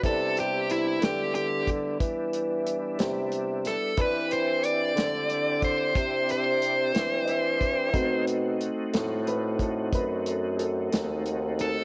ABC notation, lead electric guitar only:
X:1
M:12/8
L:1/8
Q:3/8=61
K:Clyd
V:1 name="Lead electric guitar"
A G E G G z6 A | B c d3 c c c4- c- | c z8 z2 A |]